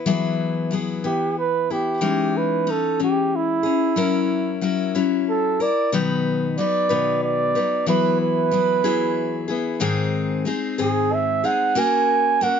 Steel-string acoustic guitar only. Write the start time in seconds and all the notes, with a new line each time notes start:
0.06 E3 F#3 B3 E4 G#4
0.71 F#3 B3 E4 G#4
1.04 E3 B3 E4
1.70 B3 E4
2.01 E3 G#3 C#4 D#4
2.67 C#4 D#4
3.00 E3 G#3 C#4
3.63 C#4 G#4
3.96 F#3 C#4 E4 A#4
4.61 F#3 C#4 E4 A#4
4.95 F#3 C#4 E4
5.60 E4 A#4
5.92 B2 D#3 F#3 B3 D#4 B4
6.58 F#3 B3 D#4 B4
6.89 B2 D#3 F#3 B3 D#4 B4
7.55 F#3 B3 D#4 B4
7.86 E3 F#3 B3 E4 G#4
8.51 F#3 B3 E4 G#4
8.84 E3 F#3 B3 E4 G#4
9.48 B3 E4 G#4
9.80 G#2 D#3 G#3 C4 D#4 G#4
10.45 G#3 C4 D#4 G#4
10.78 G#2 D#3 G#3 C4 G#4
11.44 G#3 C4 D#4 G#4
11.75 A#3 C#4 F#4 A#4
12.41 A#3 C#4 F#4 A#4